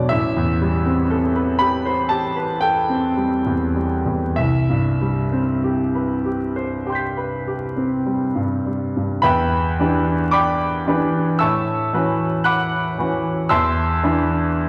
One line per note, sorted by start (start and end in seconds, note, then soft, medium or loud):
0.00 0.13 B2 soft
0.00 0.13 F#3 soft
0.00 0.14 D4 soft
0.00 0.13 F#4 soft
0.00 0.13 A4 soft
0.00 0.13 B4 soft
0.00 0.10 D5 medium
0.00 0.13 F#5 soft
0.00 0.13 D6 soft
0.00 0.10 A6 soft
0.00 0.12 B6 soft
0.09 4.33 A1 medium
0.09 1.60 E5 medium
0.36 0.76 E2 soft
0.61 1.01 G3 soft
0.85 1.26 C4 soft
1.10 1.51 A4 medium
1.36 1.76 B4 soft
1.59 2.01 G4 soft
1.59 2.10 B5 medium
1.85 2.26 C5 soft
2.09 2.52 G4 soft
2.09 2.61 A5 medium
2.36 2.78 B4 soft
2.60 3.05 A4 soft
2.60 4.36 G5 medium
2.89 3.34 C4 soft
3.17 3.63 G3 soft
3.46 3.94 E2 soft
3.76 4.25 G3 soft
4.06 4.37 E2 soft
4.36 9.21 C2 soft
4.36 8.66 E5 medium
4.69 5.19 G2 soft
5.01 5.51 G3 soft
5.32 5.82 C4 soft
5.64 6.13 G4 soft
5.95 6.44 B4 soft
6.25 6.75 G4 soft
6.56 7.05 C5 soft
6.86 7.35 G4 soft
6.86 9.21 G5 soft
6.86 9.22 C6 soft
6.92 9.24 G6 soft
6.92 9.25 B6 soft
7.17 7.65 B4 soft
7.47 7.95 G4 soft
7.76 8.24 C4 soft
8.06 8.54 G3 soft
8.35 8.84 G2 soft
8.66 9.14 G3 soft
8.97 9.25 G2 soft
9.22 9.77 E2 medium
9.22 9.80 B4 medium
9.22 10.29 E5 medium
9.22 10.29 G5 medium
9.22 10.32 B5 medium
9.79 10.84 E3 soft
9.79 10.84 D4 soft
9.79 10.84 G4 soft
9.79 10.85 B4 soft
10.31 11.37 D5 medium
10.31 11.37 G5 medium
10.31 11.37 B5 medium
10.31 11.40 D6 medium
10.87 11.37 E3 soft
10.87 11.37 D4 soft
10.87 11.38 G4 soft
10.87 11.38 B4 soft
11.39 11.93 A2 medium
11.39 12.42 E5 medium
11.39 12.42 A5 medium
11.39 12.42 C#6 medium
11.39 12.45 E6 medium
11.93 12.93 E3 soft
11.93 12.94 C#4 soft
11.93 12.94 F#4 soft
11.93 12.94 B4 soft
12.44 13.46 F#5 medium
12.44 13.46 B5 medium
12.44 13.46 D6 medium
12.44 13.49 F#6 medium
12.98 13.46 E3 soft
12.98 13.47 C#4 soft
12.98 13.47 F#4 soft
12.98 13.47 B4 soft
13.49 14.02 E2 medium
13.49 14.69 E5 medium
13.49 14.69 A5 medium
13.49 14.69 C6 medium
13.49 14.69 E6 medium
14.03 14.69 E3 soft
14.03 14.69 D4 soft
14.03 14.69 E4 soft
14.03 14.69 B4 soft